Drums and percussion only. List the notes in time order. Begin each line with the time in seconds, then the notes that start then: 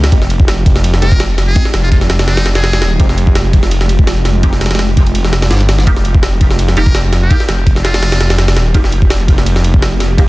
0.04 snare, ride
0.12 kick, ride
0.22 snare
0.30 ride
0.40 kick
0.48 snare, ride
0.66 kick, ride
0.76 snare
0.84 ride
0.94 snare
1.02 ride
1.12 kick
1.20 snare, ride
1.38 snare, ride
1.56 kick, ride
1.65 snare
1.74 snare, ride
1.92 kick, ride
2.01 snare
2.10 snare, ride
2.19 snare, ride
2.28 snare, ride
2.37 snare, ride
2.46 snare, ride
2.55 snare, ride
2.64 snare, ride
2.73 snare, ride
2.82 snare, ride
3.00 kick, ride
3.09 snare
3.18 ride
3.27 kick
3.35 snare, ride
3.53 kick, ride
3.63 snare
3.71 ride
3.81 snare
3.89 ride
3.99 kick
4.07 snare, ride
4.25 snare, ride
4.43 kick, ride
4.53 snare
4.61 snare, ride
4.66 snare, ride
4.71 snare, ride
4.75 snare, ride
4.79 snare, ride
4.97 kick, ride
5.07 ride
5.15 ride
5.25 snare
5.33 snare, ride
5.42 snare, ride
5.51 snare, ride
5.61 ride
5.69 snare, ride
5.79 snare
5.87 kick, ride
5.96 snare
6.05 ride
6.14 kick
6.23 snare, ride
6.41 kick, ride
6.50 snare
6.59 ride
6.68 snare
6.77 ride
6.86 kick
6.95 snare, ride
7.13 snare, ride
7.31 kick, ride
7.40 snare
7.49 snare, ride
7.67 kick, ride
7.76 snare
7.85 snare, ride
7.94 snare, ride
8.03 snare, ride
8.12 snare, ride
8.21 snare, ride
8.30 snare, ride
8.38 snare, ride
8.48 snare, ride
8.57 snare, ride
8.74 kick, ride
8.84 snare
8.92 ride
9.02 kick
9.10 snare, ride
9.28 kick, ride
9.38 snare
9.46 ride
9.56 snare
9.64 ride
9.74 kick
9.82 snare, ride
10.00 snare, ride
10.18 kick, ride